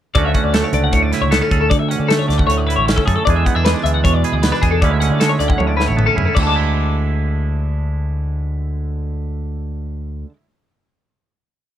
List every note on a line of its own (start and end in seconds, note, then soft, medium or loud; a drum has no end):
0.15 1.69 D2 medium
0.15 0.34 D2 medium
0.15 0.72 D3 medium
0.15 0.54 A3 medium
0.15 0.34 C#4 medium
0.15 1.13 F#4 medium
0.15 0.25 D5 medium
0.15 kick medium
0.15 closed hi-hat medium
0.25 0.34 E5 medium
0.34 1.31 C#4 soft
0.34 0.44 F#5 medium
0.34 kick medium
0.34 closed hi-hat medium
0.44 0.62 D2 medium
0.44 0.54 D5 medium
0.54 1.68 A3 soft
0.54 0.64 A4 medium
0.54 snare medium
0.54 closed hi-hat medium
0.64 0.73 C#5 medium
0.72 0.93 C#2 medium
0.72 2.27 D3 medium
0.72 0.83 D5 medium
0.72 closed hi-hat medium
0.84 0.93 F#5 medium
0.93 1.11 D2 medium
0.93 1.70 A2 medium
0.93 1.02 C#5 medium
0.93 kick medium
0.93 closed hi-hat medium
1.02 1.12 D5 medium
1.12 1.51 E4 soft
1.12 1.21 B4 medium
1.12 snare soft
1.12 closed hi-hat medium
1.21 1.39 C#2 medium
1.21 1.31 C#5 medium
1.31 1.42 B3 medium
1.31 1.40 A4 medium
1.31 snare medium
1.31 closed hi-hat medium
1.41 1.71 C#4 soft
1.41 1.51 A4 medium
1.51 1.69 D2 medium
1.51 1.60 G#4 medium
1.51 1.68 A4 medium
1.51 kick medium
1.51 closed hi-hat medium
1.61 1.70 A4 medium
1.70 3.26 D2 medium
1.70 1.98 D3 medium
1.70 1.79 D5 medium
1.70 kick medium
1.70 closed hi-hat medium
1.79 1.89 E5 medium
1.89 2.87 C#4 soft
1.89 1.99 F#5 medium
1.89 closed hi-hat medium
1.99 2.27 D3 medium
1.99 2.09 D5 medium
2.08 3.23 A3 medium
2.08 2.18 A4 medium
2.08 snare medium
2.08 closed hi-hat medium
2.19 2.28 C#5 medium
2.28 2.47 D2 medium
2.28 3.25 D3 medium
2.28 2.38 D5 medium
2.28 snare soft
2.28 closed hi-hat soft
2.38 2.46 F#5 medium
2.38 kick medium
2.47 2.75 D2 medium
2.47 3.25 A2 medium
2.47 2.57 C#5 medium
2.47 closed hi-hat medium
2.57 2.66 D5 medium
2.67 3.07 E4 soft
2.67 2.76 B4 medium
2.67 closed hi-hat soft
2.76 2.95 A1 medium
2.76 2.86 C#5 medium
2.86 3.24 C#4 medium
2.86 2.95 A4 medium
2.86 snare medium
2.86 closed hi-hat medium
2.96 3.05 A4 medium
2.96 kick medium
3.06 3.16 F#2 medium
3.06 3.15 G#4 medium
3.06 3.24 A4 soft
3.06 kick medium
3.06 closed hi-hat soft
3.16 3.25 A4 medium
3.25 4.79 E2 medium
3.25 3.44 E2 medium
3.25 3.85 E3 medium
3.25 3.67 G#3 medium
3.25 3.46 D4 medium
3.25 3.35 D5 medium
3.25 kick medium
3.25 closed hi-hat medium
3.30 4.24 G#4 medium
3.36 3.45 E5 medium
3.45 3.56 B3 medium
3.45 3.55 F#5 medium
3.45 kick medium
3.45 closed hi-hat soft
3.55 3.73 E2 medium
3.55 4.43 D4 soft
3.55 3.65 E5 medium
3.65 4.83 G#3 medium
3.65 3.75 B4 medium
3.65 snare medium
3.65 closed hi-hat medium
3.75 3.84 D5 medium
3.84 4.04 D2 medium
3.84 4.82 E3 medium
3.84 3.94 E5 medium
3.84 closed hi-hat medium
3.94 4.03 F#5 medium
4.04 4.22 E2 medium
4.04 4.80 B2 medium
4.04 4.14 C#5 medium
4.04 kick medium
4.04 closed hi-hat medium
4.14 4.24 D5 medium
4.24 4.62 G#4 soft
4.24 4.33 B4 medium
4.24 closed hi-hat medium
4.32 4.51 D2 medium
4.32 4.42 D5 medium
4.42 4.52 B3 medium
4.42 4.51 B4 medium
4.42 snare medium
4.42 closed hi-hat medium
4.52 4.81 D4 soft
4.52 4.62 B4 medium
4.52 snare soft
4.61 4.81 E2 medium
4.61 4.71 G#4 medium
4.61 4.84 G#4 soft
4.61 kick medium
4.61 closed hi-hat medium
4.71 4.81 A4 medium
4.82 6.35 D2 medium
4.82 5.09 D2 medium
4.82 5.39 D3 medium
4.82 5.20 G#3 medium
4.82 5.01 C#4 medium
4.82 5.77 E4 medium
4.82 4.91 D5 medium
4.82 kick medium
4.82 closed hi-hat medium
4.91 5.00 E5 medium
5.00 5.96 C#4 soft
5.00 5.10 F#5 medium
5.00 closed hi-hat medium
5.10 5.38 D3 medium
5.10 5.20 D5 medium
5.20 6.35 G#3 soft
5.20 5.30 A4 medium
5.20 snare medium
5.20 closed hi-hat medium
5.29 5.39 C#5 medium
5.39 5.58 D2 medium
5.39 6.40 D3 medium
5.39 5.48 D5 medium
5.39 closed hi-hat soft
5.48 5.58 F#5 medium
5.48 kick medium
5.58 5.87 D2 medium
5.58 6.36 A2 medium
5.58 5.67 C#5 medium
5.58 high tom soft
5.67 5.76 D5 medium
5.77 6.15 E4 soft
5.77 5.86 B4 medium
5.77 snare medium
5.86 6.07 A1 medium
5.86 5.97 C#5 medium
5.97 6.07 B3 soft
5.97 6.05 A4 medium
5.97 mid tom medium
6.06 6.36 C#4 soft
6.06 6.16 A4 medium
6.16 6.26 F#2 medium
6.16 6.55 E4 medium
6.16 6.25 G#4 medium
6.16 floor tom medium
6.25 6.36 A4 medium
6.35 10.26 D2 medium
6.35 10.23 D2 medium
6.35 6.39 D5 medium
6.35 6.47 F#5 medium
6.35 kick medium
6.35 crash medium
6.41 10.31 D3 medium
6.41 10.29 A5 medium
6.46 10.36 G#3 medium
6.46 10.33 D6 medium
6.56 10.46 E4 soft